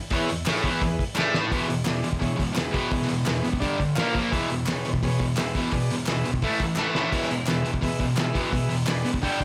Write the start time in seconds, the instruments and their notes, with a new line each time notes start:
0.10 distorted electric guitar E2 E3, transistor combo organ E4 G#4 C#5, kick, open hi-hat
0.29 distorted electric guitar E2, open hi-hat
0.46 distorted electric guitar A2 A3, transistor combo organ E4 G#4 C#5, snare, clap, open hi-hat
0.56 snare
0.63 distorted electric guitar E2 E3, kick, open hi-hat
0.82 distorted electric guitar E2, transistor combo organ E4 G#4 B4, kick, open hi-hat
0.99 kick, open hi-hat
1.15 distorted electric guitar A2 A3, transistor combo organ E4 G#4 D5, snare, clap
1.34 snare
1.50 distorted electric guitar E2 B2 E3, transistor combo organ E4 G#4 B4, kick, open hi-hat
1.68 distorted electric guitar E2 B2, open hi-hat
1.85 distorted electric guitar E2 B2, transistor combo organ E4 G#4 D5, snare, clap, open hi-hat
2.04 distorted electric guitar E2 B2, open hi-hat
2.13 kick
2.20 distorted electric guitar E2 B2, transistor combo organ E4 G#4 C#5, kick, open hi-hat
2.37 distorted electric guitar E2 B2, kick, open hi-hat
2.53 distorted electric guitar E2 B2, transistor combo organ E4 G#4 B4, clap, open hi-hat
2.58 snare
2.71 distorted electric guitar E2 B2 E3, kick, open hi-hat
2.90 distorted electric guitar E2 B2, transistor combo organ E4 G#4 B4, kick, open hi-hat
3.02 snare
3.07 distorted electric guitar E2 B2, open hi-hat
3.25 distorted electric guitar E2 B2, transistor combo organ E4 G#4 B4, snare, clap, open hi-hat
3.43 distorted electric guitar E2 B2, open hi-hat
3.53 kick
3.60 distorted electric guitar G2 D3 G3, transistor combo organ D4 G4 D5, kick, open hi-hat
3.78 distorted electric guitar G2 D3, kick, open hi-hat
3.95 distorted electric guitar A#2 F3, transistor combo organ F4 A#4 F5, snare, clap, open hi-hat
4.00 distorted electric guitar A#3
4.14 distorted electric guitar A#2 F3 A#3, kick, open hi-hat
4.31 distorted electric guitar E2 B2 E3, transistor combo organ G#4 B4 E5, kick, open hi-hat
4.49 distorted electric guitar E2 B2, open hi-hat
4.66 distorted electric guitar E2 B2, transistor combo organ G#4 B4 C#5, snare, clap, open hi-hat
4.85 distorted electric guitar E2 B2, open hi-hat
4.94 kick
5.03 distorted electric guitar E2 B2, transistor combo organ G#4 B4 C#5, kick, open hi-hat
5.19 distorted electric guitar E2 B2, kick, open hi-hat
5.37 distorted electric guitar E2 B2, transistor combo organ G#4 B4 E5, snare, clap, open hi-hat
5.55 distorted electric guitar E2 B2 E3, kick, open hi-hat
5.72 distorted electric guitar E2 B2, transistor combo organ G#4 B4 D5, kick, open hi-hat
5.90 distorted electric guitar E2 B2, open hi-hat
6.06 distorted electric guitar E2 B2, transistor combo organ G#4 B4 E5, snare, clap, open hi-hat
6.24 distorted electric guitar E2 B2, open hi-hat
6.34 kick
6.42 distorted electric guitar A2 E3 A3, transistor combo organ E4 A4 E5, kick, open hi-hat
6.60 distorted electric guitar A2 E3, kick, open hi-hat
6.76 distorted electric guitar A2 E3 A3, transistor combo organ E4 A4 E5, snare, clap
6.95 distorted electric guitar A2 E3 A3, snare
7.12 distorted electric guitar E2 B2 E3, transistor combo organ G#4 B4 E5, kick, open hi-hat, splash
7.23 snare
7.29 distorted electric guitar E2 B2, open hi-hat
7.46 distorted electric guitar E2 B2, transistor combo organ G#4 B4 E5, snare, clap, open hi-hat
7.65 distorted electric guitar E2 B2, open hi-hat
7.74 kick
7.81 distorted electric guitar E2 B2, transistor combo organ G#4 B4 E5, kick, open hi-hat
7.99 distorted electric guitar E2 B2, kick, open hi-hat
8.16 distorted electric guitar E2 B2, transistor combo organ G#4, snare, clap, open hi-hat
8.20 transistor combo organ B4 E5
8.33 distorted electric guitar E2 B2 E3, kick, open hi-hat
8.51 distorted electric guitar E2 B2, transistor combo organ G#4 B4 E5, kick, open hi-hat
8.69 distorted electric guitar E2 B2, open hi-hat
8.86 distorted electric guitar E2 B2, transistor combo organ G#4 B4 D5, snare, clap, open hi-hat
9.05 distorted electric guitar E2 B2, open hi-hat
9.14 kick
9.22 distorted electric guitar G2 D3 G3, transistor combo organ G4 D5 G5, kick, open hi-hat
9.40 distorted electric guitar G2 D3, kick